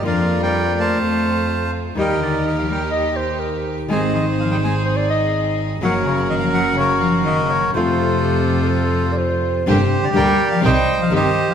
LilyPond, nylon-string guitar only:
\new Staff \with { instrumentName = "Nylon-string guitar" } { \time 4/4 \key f \mixolydian \tempo 4 = 125 <f bes d' f'>2 r2 | <ees bes ees' g'>1 | <ees aes c' ees' aes'>1 | <des ges bes des' ges'>1 |
<c f a c' f'>1 | \key g \minor <d g bes d' g'>8 r8 <d g bes d' g'>8 r8 <c ees g c' g'>8 r8 <c ees g c' g'>8 r8 | }